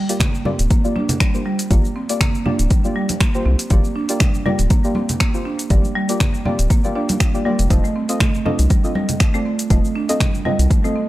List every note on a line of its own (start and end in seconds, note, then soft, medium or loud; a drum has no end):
0.09 0.20 A#3 medium
0.09 0.20 F4 medium
0.09 0.20 G4 medium
0.09 0.20 D5 loud
0.09 closed hi-hat medium
0.09 shaker medium
0.20 0.33 A#3 medium
0.20 finger snap loud
0.20 kick loud
0.20 closed hi-hat soft
0.20 low conga loud
0.20 shaker medium
0.35 shaker soft
0.45 0.58 A#3 medium
0.45 0.58 C4 medium
0.45 0.58 F4 medium
0.45 0.58 G4 medium
0.45 0.58 D5 loud
0.45 high conga loud
0.45 low conga loud
0.59 0.67 D1 loud
0.59 closed hi-hat medium
0.59 shaker medium
0.70 0.78 A#3 loud
0.70 kick loud
0.70 closed hi-hat soft
0.70 high conga medium
0.70 shaker medium
0.84 1.31 A#3 medium
0.84 1.31 F4 medium
0.84 1.31 G4 medium
0.84 1.31 D5 loud
0.84 shaker soft
0.96 1.08 D4 medium
0.96 high conga medium
1.09 closed hi-hat medium
1.09 low conga loud
1.09 shaker medium
1.20 1.33 G3 medium
1.20 finger snap loud
1.20 kick loud
1.20 closed hi-hat soft
1.20 shaker medium
1.34 1.68 A#3 medium
1.34 1.68 F4 medium
1.34 1.68 G4 medium
1.34 1.68 C5 medium
1.34 shaker soft
1.46 1.58 G3 medium
1.59 closed hi-hat medium
1.59 shaker medium
1.71 1.80 G1 loud
1.71 1.83 A#3 loud
1.71 1.83 A#3 medium
1.71 1.83 F4 medium
1.71 1.83 G4 medium
1.71 1.83 D5 loud
1.71 kick loud
1.71 closed hi-hat soft
1.71 high conga medium
1.71 shaker medium
1.85 shaker soft
1.96 2.08 C4 medium
2.09 2.20 A#3 medium
2.09 2.20 F4 medium
2.09 2.20 G4 medium
2.09 2.20 D5 loud
2.09 closed hi-hat medium
2.09 shaker medium
2.21 2.28 A#3 loud
2.21 finger snap loud
2.21 kick loud
2.21 closed hi-hat soft
2.21 low conga loud
2.21 shaker medium
2.35 shaker soft
2.45 2.58 A#3 medium
2.45 2.58 D4 loud
2.45 2.58 F4 medium
2.45 2.58 G4 medium
2.45 2.58 D5 loud
2.45 high conga loud
2.45 low conga medium
2.59 2.68 D1 loud
2.59 closed hi-hat medium
2.59 shaker medium
2.70 2.83 G3 medium
2.70 kick loud
2.70 closed hi-hat soft
2.70 shaker medium
2.85 3.31 A#3 medium
2.85 3.31 F4 medium
2.85 3.31 G4 medium
2.85 3.31 D5 loud
2.85 high conga medium
2.85 shaker soft
2.96 3.08 G3 medium
3.09 closed hi-hat medium
3.09 high conga loud
3.09 shaker medium
3.21 3.33 A#3 medium
3.21 finger snap loud
3.21 kick loud
3.21 closed hi-hat soft
3.21 high conga medium
3.21 shaker medium
3.35 3.68 A#3 medium
3.35 3.68 F4 medium
3.35 3.68 G4 medium
3.35 3.68 C5 medium
3.35 shaker soft
3.46 3.55 C2 loud
3.46 3.58 C4 medium
3.46 high conga medium
3.59 closed hi-hat medium
3.59 shaker medium
3.70 3.80 G1 medium
3.70 3.78 A#3 medium
3.70 3.83 A#3 loud
3.70 3.83 F4 medium
3.70 3.83 G4 medium
3.70 3.83 D5 loud
3.70 kick loud
3.70 closed hi-hat soft
3.70 high conga medium
3.70 shaker medium
3.84 shaker soft
3.96 4.08 D4 loud
4.09 4.20 A#3 medium
4.09 4.20 F4 medium
4.09 4.20 G4 medium
4.09 4.20 D5 loud
4.09 closed hi-hat medium
4.09 shaker medium
4.20 4.33 G3 medium
4.20 finger snap loud
4.20 kick loud
4.20 closed hi-hat soft
4.20 low conga loud
4.20 shaker medium
4.34 shaker soft
4.46 4.58 G3 loud
4.46 4.58 A#3 medium
4.46 4.58 F4 medium
4.46 4.58 G4 medium
4.46 4.58 D5 loud
4.46 high conga loud
4.46 low conga medium
4.59 4.67 D1 loud
4.59 closed hi-hat medium
4.59 shaker medium
4.70 4.83 A#3 medium
4.70 kick loud
4.70 closed hi-hat soft
4.70 high conga loud
4.70 shaker medium
4.84 5.31 A#3 medium
4.84 5.31 F4 medium
4.84 5.31 G4 medium
4.84 5.31 D5 loud
4.84 shaker soft
4.95 5.08 C4 medium
4.95 high conga loud
5.09 closed hi-hat medium
5.09 low conga medium
5.09 shaker medium
5.20 5.28 A#3 loud
5.20 finger snap loud
5.20 kick loud
5.20 closed hi-hat soft
5.20 shaker medium
5.34 5.68 A#3 medium
5.34 5.68 F4 medium
5.34 5.68 G4 medium
5.34 5.68 C5 medium
5.34 shaker soft
5.45 5.58 D4 medium
5.59 closed hi-hat medium
5.59 shaker medium
5.70 5.80 G1 loud
5.70 5.83 G3 medium
5.70 5.83 A#3 loud
5.70 5.83 F4 medium
5.70 5.83 G4 medium
5.70 5.83 D5 loud
5.70 kick loud
5.70 closed hi-hat soft
5.70 high conga medium
5.70 shaker medium
5.85 shaker soft
5.95 6.08 G3 loud
6.09 6.20 A#3 medium
6.09 6.20 F4 medium
6.09 6.20 G4 medium
6.09 6.20 D5 loud
6.09 closed hi-hat medium
6.09 shaker medium
6.20 6.33 A#3 medium
6.20 finger snap loud
6.20 kick loud
6.20 closed hi-hat soft
6.20 low conga medium
6.20 shaker medium
6.34 shaker soft
6.45 6.58 A#3 medium
6.45 6.58 C4 medium
6.45 6.58 F4 medium
6.45 6.58 G4 medium
6.45 6.58 D5 medium
6.45 high conga loud
6.45 low conga medium
6.59 6.67 D1 loud
6.59 closed hi-hat soft
6.59 shaker medium
6.70 6.78 A#3 loud
6.70 kick loud
6.70 closed hi-hat soft
6.70 shaker medium
6.84 6.93 A#3 medium
6.84 6.93 F4 medium
6.84 6.93 G4 medium
6.84 6.93 D5 medium
6.84 high conga medium
6.84 shaker soft
6.95 7.31 A#3 medium
6.95 7.08 D4 medium
6.95 7.31 F4 medium
6.95 7.31 G4 medium
6.95 7.31 D5 medium
7.09 closed hi-hat soft
7.09 high conga loud
7.09 shaker medium
7.20 7.33 G3 medium
7.20 finger snap loud
7.20 kick loud
7.20 closed hi-hat soft
7.20 high conga medium
7.20 shaker medium
7.34 7.43 A#3 medium
7.34 7.43 F4 medium
7.34 7.43 G4 medium
7.34 7.43 D5 medium
7.34 shaker soft
7.45 7.58 G3 medium
7.45 7.68 A#3 medium
7.45 7.68 F4 medium
7.45 7.68 G4 medium
7.45 7.68 D5 loud
7.45 high conga medium
7.59 7.67 F1 medium
7.59 closed hi-hat medium
7.59 shaker medium
7.70 7.80 F1 medium
7.70 7.83 A3 medium
7.70 7.83 C4 loud
7.70 7.83 F4 medium
7.70 7.83 A4 medium
7.70 7.83 D#5 loud
7.70 kick loud
7.70 closed hi-hat soft
7.70 high conga medium
7.70 shaker medium
7.84 7.90 A3 medium
7.84 shaker soft
7.96 8.08 C4 medium
8.09 8.20 C4 medium
8.09 8.20 F4 medium
8.09 8.20 A4 medium
8.09 8.20 D#5 loud
8.09 closed hi-hat medium
8.09 shaker medium
8.20 8.28 A3 loud
8.20 finger snap loud
8.20 kick loud
8.20 closed hi-hat soft
8.20 low conga loud
8.20 shaker medium
8.35 shaker soft
8.45 8.58 C4 medium
8.45 8.58 D4 loud
8.45 8.58 F4 medium
8.45 8.58 A4 medium
8.45 8.58 D#5 loud
8.45 high conga medium
8.45 low conga medium
8.59 8.67 C2 loud
8.59 closed hi-hat soft
8.59 shaker medium
8.70 8.83 G3 medium
8.70 kick loud
8.70 closed hi-hat soft
8.70 high conga medium
8.70 shaker medium
8.84 9.31 C4 medium
8.84 9.31 F4 medium
8.84 9.31 A4 medium
8.84 9.31 D#5 loud
8.84 shaker soft
8.95 9.08 G3 medium
8.95 high conga loud
9.09 closed hi-hat medium
9.09 low conga medium
9.09 shaker medium
9.20 9.33 A3 medium
9.20 finger snap loud
9.20 kick loud
9.20 closed hi-hat soft
9.20 shaker medium
9.34 9.40 A3 loud
9.34 9.68 C4 medium
9.34 9.68 F4 medium
9.34 9.68 A4 medium
9.34 9.68 D5 medium
9.34 shaker soft
9.45 9.58 C4 medium
9.59 closed hi-hat medium
9.59 shaker medium
9.70 9.80 F1 loud
9.70 9.78 A3 loud
9.70 9.83 C4 medium
9.70 9.83 F4 medium
9.70 9.83 A4 medium
9.70 9.83 D#5 loud
9.70 kick loud
9.70 closed hi-hat soft
9.70 high conga medium
9.70 shaker medium
9.85 shaker soft
9.95 10.08 D4 loud
10.09 10.20 C4 medium
10.09 10.19 F4 medium
10.09 10.19 A4 medium
10.09 10.19 D#5 loud
10.09 closed hi-hat medium
10.09 shaker medium
10.20 10.33 G3 medium
10.20 finger snap medium
10.20 kick loud
10.20 closed hi-hat soft
10.20 low conga loud
10.20 shaker medium
10.35 shaker soft
10.45 10.58 G3 loud
10.45 10.58 C4 medium
10.45 10.58 F4 medium
10.45 10.58 A4 medium
10.45 10.58 D#5 loud
10.45 high conga medium
10.45 low conga medium
10.59 10.67 C2 loud
10.59 closed hi-hat medium
10.59 shaker medium
10.71 10.83 A3 medium
10.71 kick loud
10.71 closed hi-hat soft
10.71 shaker medium
10.84 10.90 A3 loud
10.84 11.09 C4 medium
10.84 11.09 F4 medium
10.84 11.09 A4 medium
10.84 11.09 D#5 loud
10.84 high conga medium
10.84 shaker soft
10.96 11.08 C4 medium